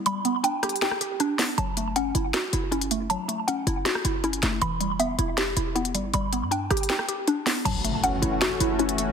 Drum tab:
CC |------------------------------------------------|------------------------------------------------|------------------------------------------------|------------------------------------------------|
HH |x-----x-----x-----x-x-x-x-----x-----x-----o-----|x-----x-----x-----x-----x-----x-----x--x--x-----|x-----x-----x-----x-----x-----x-----x--x--x-----|x-----x-----x-----x-----x-----x-----x--x--x-----|
SD |------------------r-----o--r--------------o-----|------------------------o-----------------------|------------------------o--r--------------o-----|------------------------o-----------------------|

CC |------------------------------------------------|x-----------------------------------------------|
HH |x-----x-----x-----x-x-x-x-----x-----x-----o-----|x-----x-----x-----x-----x-----x-----x--x--x-----|
SD |------------------r-----o--r--------------o-----|------------------------o-----------------------|